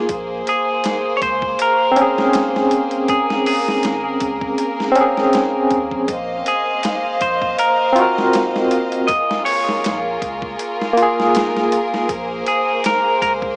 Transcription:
Already playing: A#3 G#4
0.09 A#1 C5, kick, closed hi-hat
0.47 G#4, closed hi-hat
0.84 snare, closed hi-hat
1.17 C#5
1.22 C#2 C5, kick, closed hi-hat
1.42 kick
1.59 A#4, closed hi-hat
1.92 C4
1.96 C#4, closed hi-hat
2.01 G#4
2.18 snare
2.33 snare, closed hi-hat
2.56 snare
2.71 closed hi-hat
2.91 closed hi-hat
3.08 G#4 A#4, kick, closed hi-hat
3.30 snare
3.46 G#4, open hi-hat
3.68 snare
3.83 G#1, snare, closed hi-hat
4.20 C#2, kick, closed hi-hat
4.41 kick
4.58 closed hi-hat
4.80 snare
4.92 C4, closed hi-hat
4.96 C#4
5.01 G#4
5.17 snare
5.33 snare, closed hi-hat
5.70 D#2, kick, closed hi-hat
5.91 A#1, kick
6.08 A#1 C5 D#5 F5, kick, closed hi-hat
6.46 G#4, closed hi-hat
6.83 snare, closed hi-hat
7.21 A#1 C5, kick, closed hi-hat
7.42 kick
7.59 A#4, closed hi-hat
7.93 C4 F4, closed hi-hat
7.99 F#4 A#4
8.18 snare
8.33 snare, closed hi-hat
8.56 snare
8.71 closed hi-hat
8.92 closed hi-hat
9.07 F4 G#4 A#4 D#5, kick, closed hi-hat
9.31 snare
9.45 C#5, open hi-hat
9.69 snare
9.84 A#1, snare, closed hi-hat
10.22 C#2, kick, closed hi-hat
10.42 kick
10.59 closed hi-hat
10.82 snare
10.93 A#3
10.97 F4, closed hi-hat
11.02 G#4
11.20 snare
11.35 snare, closed hi-hat
11.57 snare
11.72 closed hi-hat
11.94 snare
12.08 A#1 A#3 C5, kick, closed hi-hat
12.47 G#4, closed hi-hat
12.84 A#4, snare, closed hi-hat
13.22 C#2 A#4, kick, closed hi-hat
13.42 kick

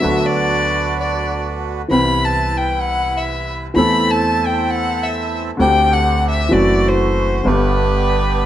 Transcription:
Already playing: E5
0.00 D2 D3 F#3 B3 D4 F#4 A4 B4
0.26 D5
0.99 D5
1.88 C2 C3 E3 B3 C4 E4 B4 B5
1.93 G4
2.25 A5
2.57 G5
2.81 F#5
3.17 E5
3.74 E2 E3 A3 C4 E4 A4 B5
3.78 A4
4.11 A5
4.46 G5
4.70 F#5
5.03 E5
5.57 D2 D3 A3 C4 D4 G4 G5
5.61 G4
5.93 F#5
6.30 E5
6.49 F#1 F#2 E3 F#3 A3 C4 E4 F#4 D5
6.53 F#4
6.88 C5
7.43 G1 G2 D3 G3 B3 D4 G4 B4

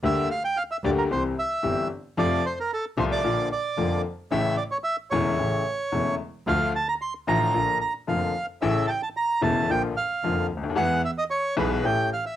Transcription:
0.03 D2 D3 G3 A#3 G4 E5
0.31 F5
0.45 G5
0.57 F5
0.71 E5
0.83 D2 D3 G3 A#3 G4 D5
0.98 A#4
1.10 C2 C3 E3 G3 C4 G4 C5
1.39 E5
1.63 G1 G2 E3 G3 C4 G4
2.17 F2 C3 F3 A3 F4 D5
2.46 C5
2.60 A#4
2.74 A4
2.97 C2 C3 F3 A3 F4 C5
3.12 D5
3.24 A#1 A#2 D3 F3 A#3 F4
3.52 D5
3.77 F1 F2 D3 F3 A#3 F4
4.31 A1 A2 C#3 E3 A3 E4 E5
4.57 D5
4.71 C#5
4.84 E5
5.11 E1 E2 C#3 E3 A3 E4 C#5
5.39 A1 A2 C#3 E3 A3 E4
5.92 E1 E2 C#3 E3 A3 E4
6.47 D2 D3 F3 A3 F4 F5
6.76 A5
6.89 A#5
7.02 C6
7.27 A1 A2 D3 F3 A3 F4 A#5
7.54 A#1 A#2 D3 F3 A#3 F4
7.81 A#5
8.07 F1 F2 D3 F3 A#3 F4 F5
8.62 A1 A2 C#3 E3 A3 E4 E5
8.87 G5 A5
9.03 A5
9.17 A#5
9.41 E1 E2 C#3 E3 A3 E4 A5
9.69 A#1 A#2 D3 F3 A#3 F4 G5
9.97 F5
10.23 F1 F2 D3 F3 A#3 F4
10.51 D2
10.57 C#2
10.63 D2
10.70 D#2
10.76 E2 E3 G#3 B3 G#4 F#5
11.05 E5
11.18 D#5
11.30 C#5
11.57 B1 B2 E3 G#3 B3 G#4 B4
11.84 A1 A2 E3 A3 C#4 G4 G5
12.13 F5
12.26 E5

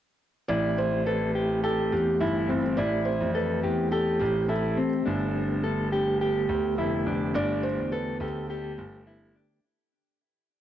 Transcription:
0.48 A1 E3 A3 C4 E4 G4 D5
0.78 C5
1.06 A4 B4
1.35 G4
1.64 G4 A4
1.92 E2 G4
2.20 G1 E4
2.49 G1 C4
2.77 A1 E4 D5
3.05 C5
3.21 F2
3.35 A4 B4
3.63 E2 G4
3.92 G4 A4
4.19 A1 G4
4.49 E4 A4
4.77 C4
5.06 G1 D3 B3 D4
5.64 A4
5.92 G4
6.21 G4
6.49 D2
6.78 F1 E4
7.06 F1 D4
7.34 G1 D4 D5
7.63 C5
7.78 E2
7.92 A4 B4
8.20 D2 G4 A4
8.50 G4
8.78 G1
9.07 E4
9.35 D4

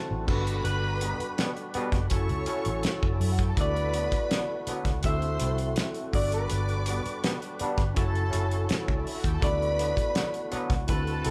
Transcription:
Already playing: D3 A3 C4 E4 F#4 A4 C5
0.11 A1
0.26 G1 G3 B3 D4 F#4 A4 B4 B5, kick, crash
0.47 closed hi-hat
0.64 G1 B4, closed hi-hat
1.01 B2 G3 B3, closed hi-hat
1.19 muted fingered electric bass stroke, closed hi-hat
1.38 B2 G3 B3, snare, closed hi-hat
1.57 closed hi-hat
1.74 B2 G3 B3, muted fingered electric bass stroke, closed hi-hat
1.92 F#1, kick, snare, closed hi-hat
2.10 F#1 F#3 C#4 E4 F#4 A4 C#5 C#6, kick, closed hi-hat
2.29 C#2, closed hi-hat
2.46 C#4 E4 F#4 A4, closed hi-hat
2.65 A1, closed hi-hat
2.83 muted fingered electric bass stroke, snare, closed hi-hat
3.03 F#1 C#4 C#5, kick
3.12 D4 D5
3.20 F#2 E4 E5, open hi-hat
3.31 F#4 F#5
3.39 G4 G5, kick, closed hi-hat
3.48 A4 A5
3.57 D2 D3 A3 B3 E4 F#4 A4 B4 B5, kick, closed hi-hat
3.61 D5
3.76 closed hi-hat
3.94 D3 F#3 B3, closed hi-hat
4.12 muted fingered electric bass stroke, kick, closed hi-hat
4.30 D3 F#3 B3, snare, closed hi-hat
4.67 D3 F#3 B3, muted fingered electric bass stroke, closed hi-hat
4.85 C#2, kick, snare, closed hi-hat
5.03 D2 A3 C4 E4 F#4 A4 C5 E5 C6, kick, closed hi-hat
5.22 closed hi-hat
5.39 C2 C4 E4 F#4 A4, closed hi-hat
5.58 closed hi-hat
5.76 snare, closed hi-hat
5.95 closed hi-hat
6.13 G1 G3 B3 D4 F#4 A4 B4 D5 D6, kick, open hi-hat
6.32 B4, closed hi-hat
6.50 G1, closed hi-hat
6.69 closed hi-hat
6.86 B2 G3 B3, closed hi-hat
7.06 muted fingered electric bass stroke, closed hi-hat
7.24 B2 G3 B3, snare, closed hi-hat
7.42 closed hi-hat
7.59 G3 B3 D4, muted fingered electric bass stroke, closed hi-hat
7.78 G1, kick, snare, closed hi-hat
7.94 F#1 F#3 C#4 E4 F#4 A4 A5, kick, closed hi-hat
8.15 closed hi-hat
8.30 F#1 C#4 E4 F#4 A4, closed hi-hat
8.51 closed hi-hat
8.69 muted fingered electric bass stroke, snare, closed hi-hat
8.79 B3 B4
8.87 C#2 C#4 C#5, kick
8.96 D4 D5
9.05 E4 E5, open hi-hat
9.15 F#4 F#5
9.24 D#2 G4 G5, kick, closed hi-hat
9.33 A4 A5
9.40 D2 D3 A3 B3 E4 F#4 A4 B4 D5 B5, kick, closed hi-hat
9.62 closed hi-hat
9.79 D3 F#3 B3, closed hi-hat
9.97 muted fingered electric bass stroke, kick, closed hi-hat
10.15 D3 F#3 B3, snare, closed hi-hat
10.34 closed hi-hat
10.51 D3 F#3 B3, muted fingered electric bass stroke, closed hi-hat
10.70 C#2, kick, snare, closed hi-hat
10.87 D2 C4 E4 F#4 A4 B4 A5, kick, closed hi-hat
11.07 closed hi-hat
11.24 C2 C4 E4 F#4 A4, closed hi-hat

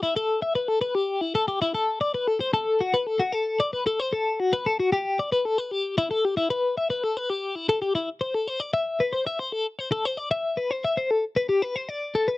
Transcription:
0.03 E4
0.16 A4
0.42 E5
0.55 B4
0.68 A4
0.81 B4
0.95 G4
1.21 E4
1.35 A4
1.48 G4
1.62 E4
1.75 A4
2.01 D5
2.14 B4
2.28 A4
2.40 C5
2.53 A4
2.81 F#4
2.94 B4
3.07 A4
3.19 F#4
3.32 A4
3.60 D5
3.73 B4
3.87 A4
4.00 C5
4.13 A4
4.40 F#4
4.53 B4
4.66 A4
4.80 F#4
4.92 G4
5.19 D5
5.32 B4
5.45 A4
5.58 B4
5.71 G4
5.98 E4
6.11 A4
6.25 G4
6.37 E4
6.50 B4
6.78 E5
6.90 B4
7.04 A4
7.17 B4
7.30 G4
7.55 E4
7.69 A4
7.82 G4
7.95 E4
8.21 C5
8.34 A4
8.48 C5
8.60 D5
8.74 E5
9.00 B4
9.13 C5
9.27 E5
9.39 C5
9.52 A4
9.79 C5
9.92 A4
10.05 C5
10.17 D5
10.31 E5
10.57 B4
10.71 C5
10.85 E5
10.97 C5
11.11 A4
11.36 B4
11.49 G4
11.62 B4
11.76 C5
11.89 D5
12.15 A4
12.28 B4

